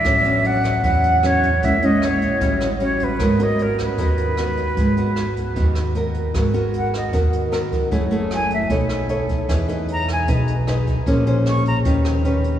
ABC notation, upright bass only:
X:1
M:4/4
L:1/8
Q:1/4=152
K:G#m
V:1 name="Upright bass" clef=bass
=A,,,4 E,,4 | A,,,4 =A,,,4 | G,,,4 D,,4 | G,,,4 D,,4 |
G,,,4 D,,4 | F,,,4 B,,,4 | E,,4 B,,,4 | A,,,4 D,,4 |]